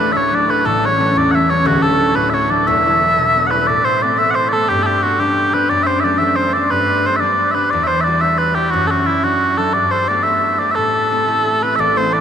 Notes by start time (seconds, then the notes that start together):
Already playing: D1 D2 A2 B3 B4
0.00 F#3 A3 D4
0.12 A2 E5
0.17 C#5
0.32 F#3 A3 D4 D5
0.49 F#3 A3 D4 B4
0.65 A1 A2 A4
0.83 G3 A3 C#4 C#5
0.99 G3 A3 C#4
1.15 E2 D5
1.31 G3 A3 C#4 E5 F#5
1.49 G3 A3 C#4 C#5
1.65 D1 D2 F#4
1.82 F#3 A3 D4 A4
2.00 F#3 A3 D4
2.16 A2 B4
2.30 F#3 A3 D4 E5
2.34 C#5
2.50 F#3 A3 D4 D5
2.67 E1 E2 E5
2.86 G3 B3 E4
3.02 G3 B3 E4
3.18 B2
3.36 G3 B3 E4
3.47 F#5
3.51 G3 B3 E4 B4
3.67 A2 D5
3.85 C5
4.02 A3 B3 C4 D5
4.18 A3 B3 C4 E5
4.30 F#5
4.35 C5
4.49 A3 A4 D5
4.53 B3 C4
4.69 G2 G4
4.83 G4 A4
5.03 G3 B3 D4 F#4
5.19 G3 B3 D4 G4
5.54 G3 B3 D4 B4
5.69 F#2 D5
5.83 C5 E5
6.00 D5 E5
6.04 F#3 A3 D4
6.18 F#3 A3 D4 E5
6.36 C5
6.53 F#3 A3 D4 D5
6.70 G2 B4
7.06 G3 B3 D4 C5
7.16 E5
7.20 G3 B3 D4 D5
7.51 B4 E5
7.57 G3 B3 D4
7.70 E2 D5
7.84 C5 E5
8.01 D5 E5
8.06 G3 E4 F#4
8.21 G3 E4 F#4 E5
8.38 B4
8.55 G3 E4 F#4 G4
8.70 F#2 F#4
8.87 F#4 A4
9.06 F#3 D4 E4
9.24 F#3 D4 E4 F#4
9.58 F#3 D4 E4 A4
9.73 G2 D5
9.91 C5
10.08 A3 B3 G4 D5
10.23 A3 B3 G4 E5
10.59 A3 B3 G4 D5
10.71 E5
10.75 A2 A4
11.11 A3 C4 E4
11.27 A3 C4 E4
11.62 A3 C4 E4 B4
11.76 A1 A2 E5
11.80 D5
11.96 A3 B3 C4 C5
12.12 A3 B3 C4 D5